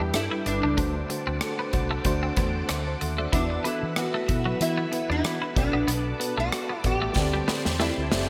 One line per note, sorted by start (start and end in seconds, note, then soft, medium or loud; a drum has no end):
0.00 0.10 E2 medium
0.00 0.79 G2 medium
0.00 0.13 G3 medium
0.00 0.11 D4 medium
0.00 0.14 D4 medium
0.00 0.14 E4 medium
0.00 0.17 G4 loud
0.00 0.15 A4 medium
0.00 0.47 B4 medium
0.00 0.74 B4 medium
0.00 0.75 E5 medium
0.00 0.75 G5 medium
0.00 0.74 D6 medium
0.13 0.27 G2 medium
0.13 0.42 G3 medium
0.13 0.43 D4 medium
0.13 0.43 E4 medium
0.13 0.24 E4 medium
0.13 0.43 A4 medium
0.13 cross-stick loud
0.13 closed hi-hat medium
0.31 0.43 E4 medium
0.45 0.59 G1 medium
0.45 0.74 G3 medium
0.45 0.75 D4 medium
0.45 1.06 D4 medium
0.45 0.75 E4 medium
0.45 0.75 B4 medium
0.45 muted clean electric guitar stroke soft
0.45 closed hi-hat medium
0.63 0.74 C#2 medium
0.63 0.75 D4 medium
0.77 1.70 D3 medium
0.77 1.06 A3 medium
0.77 0.92 D4 medium
0.77 1.06 D4 medium
0.77 1.07 F#4 medium
0.77 3.31 C5 medium
0.77 1.07 C5 medium
0.77 7.12 F#5 medium
0.77 3.31 A5 medium
0.77 3.31 D6 medium
0.77 kick loud
0.77 closed hi-hat medium
1.10 1.38 A3 medium
1.10 1.39 D4 medium
1.10 1.39 F#4 medium
1.10 1.39 C5 medium
1.10 muted clean electric guitar stroke soft
1.10 closed hi-hat medium
1.27 1.38 D2 medium
1.27 1.39 C4 medium
1.41 1.70 A3 medium
1.41 1.70 D4 medium
1.41 1.70 F#4 medium
1.41 1.71 A4 medium
1.41 cross-stick loud
1.41 closed hi-hat medium
1.59 1.71 B3 medium
1.73 1.97 C2 medium
1.73 2.02 A3 medium
1.73 2.02 D4 medium
1.73 2.02 F#4 medium
1.73 2.03 C5 medium
1.73 muted clean electric guitar stroke soft
1.73 kick medium
1.73 closed hi-hat medium
1.91 2.02 A3 medium
2.05 2.29 D2 medium
2.05 2.34 A3 loud
2.05 2.34 D4 medium
2.05 2.34 F#4 loud
2.05 2.35 C5 loud
2.05 muted clean electric guitar stroke soft
2.05 kick medium
2.05 closed hi-hat medium
2.23 2.35 C4 medium
2.37 2.61 E2 medium
2.37 2.66 A3 medium
2.37 2.51 B3 medium
2.37 2.66 D4 medium
2.37 2.66 F#4 medium
2.37 2.66 C5 medium
2.37 kick medium
2.37 closed hi-hat medium
2.69 2.94 D2 medium
2.69 2.83 A3 medium
2.69 2.86 E5 medium
2.69 2.86 C6 medium
2.69 cross-stick loud
2.69 closed hi-hat medium
2.87 3.01 C5 medium
2.87 3.00 A5 medium
3.01 3.26 D#2 medium
3.01 3.18 A4 medium
3.01 3.18 F#5 medium
3.01 muted clean electric guitar stroke soft
3.01 closed hi-hat medium
3.18 3.30 A3 medium
3.18 3.32 F#4 medium
3.18 3.49 D5 medium
3.33 3.57 E2 loud
3.33 3.47 E3 medium
3.33 4.25 E3 medium
3.33 3.62 B3 medium
3.33 3.67 D4 medium
3.33 3.62 E4 medium
3.33 3.62 F#4 medium
3.33 7.12 B4 medium
3.33 5.54 E5 medium
3.33 3.62 E5 loud
3.33 5.54 E6 medium
3.33 kick medium
3.33 closed hi-hat medium
3.50 muted clean electric guitar stroke soft
3.65 3.79 B3 medium
3.65 3.94 B3 medium
3.65 3.94 E4 medium
3.65 3.98 E4 medium
3.65 3.94 F#4 medium
3.65 3.94 A4 medium
3.65 closed hi-hat medium
3.83 4.07 E3 medium
3.96 4.25 B3 medium
3.96 4.26 E4 medium
3.96 4.26 F#4 medium
3.96 4.57 F#4 medium
3.96 4.26 B4 medium
3.96 cross-stick loud
3.96 closed hi-hat medium
4.14 4.26 A3 medium
4.28 4.53 B2 medium
4.28 4.58 B3 medium
4.28 4.58 E4 medium
4.28 4.58 F#4 medium
4.28 4.58 E5 medium
4.28 muted clean electric guitar stroke soft
4.28 kick medium
4.28 closed hi-hat medium
4.46 4.57 F#3 medium
4.60 4.85 E3 loud
4.60 4.90 B3 medium
4.60 4.90 E4 medium
4.60 5.10 E4 medium
4.60 4.90 F#4 medium
4.60 4.90 E5 medium
4.60 closed hi-hat medium
4.78 4.89 B3 medium
4.92 5.21 B3 medium
4.92 5.21 E4 medium
4.92 5.22 F#4 medium
4.92 5.22 B4 medium
4.92 muted clean electric guitar stroke soft
4.92 closed hi-hat medium
5.10 5.21 E2 medium
5.10 5.22 D4 medium
5.10 5.57 E4 medium
5.24 5.37 E3 loud
5.24 5.53 B3 medium
5.24 5.53 E4 medium
5.24 5.54 F#4 medium
5.24 5.54 E5 medium
5.24 cross-stick loud
5.24 closed hi-hat medium
5.42 5.54 E4 medium
5.56 5.70 B1 medium
5.56 6.48 B2 medium
5.56 6.14 B3 medium
5.56 6.41 D4 medium
5.56 6.14 F#4 medium
5.56 6.14 A4 medium
5.56 6.14 D5 medium
5.56 8.29 A5 medium
5.56 8.29 D6 medium
5.56 muted clean electric guitar stroke soft
5.56 kick medium
5.56 closed hi-hat medium
5.73 5.85 A#1 medium
5.73 5.85 B3 medium
5.88 6.12 B1 loud
5.88 6.02 B3 medium
5.88 closed hi-hat medium
6.20 6.49 B3 medium
6.20 6.49 F#4 medium
6.20 6.49 A4 medium
6.20 6.49 B4 medium
6.20 muted clean electric guitar stroke soft
6.20 closed hi-hat medium
6.38 6.49 B1 medium
6.38 6.49 A3 medium
6.38 6.86 F#4 medium
6.52 6.81 B3 medium
6.52 6.81 F#4 medium
6.52 6.81 A4 medium
6.52 6.81 D5 medium
6.52 cross-stick loud
6.52 closed hi-hat medium
6.70 6.81 B3 medium
6.84 7.08 A1 medium
6.84 7.13 B3 medium
6.84 7.13 F#4 medium
6.84 8.09 G4 medium
6.84 7.13 A4 medium
6.84 7.13 D5 medium
6.84 muted clean electric guitar stroke soft
6.84 kick medium
6.84 closed hi-hat medium
7.02 7.13 A3 medium
7.16 7.40 D2 medium
7.16 8.08 D3 medium
7.16 7.45 C4 medium
7.16 7.45 G4 medium
7.16 7.45 A4 medium
7.16 8.29 C5 medium
7.16 7.45 D5 loud
7.16 8.29 G5 medium
7.16 muted clean electric guitar stroke soft
7.16 kick medium
7.16 snare medium
7.34 7.45 G3 medium
7.47 7.62 B3 medium
7.47 7.76 C4 medium
7.47 7.77 G4 medium
7.47 7.77 A4 medium
7.47 7.77 D5 medium
7.47 muted fingered electric bass stroke soft
7.47 snare medium
7.65 7.90 E2 medium
7.65 snare medium
7.79 7.94 A3 medium
7.79 8.08 C4 medium
7.79 8.29 E4 medium
7.79 8.09 G4 medium
7.79 8.09 A4 medium
7.79 8.09 D5 medium
7.79 snare medium
7.98 8.08 D2 medium
8.11 8.29 F#1 medium
8.11 8.29 C4 medium
8.11 8.29 G4 medium
8.11 8.29 A4 medium
8.11 8.29 D5 medium
8.11 muted clean electric guitar stroke soft
8.11 snare medium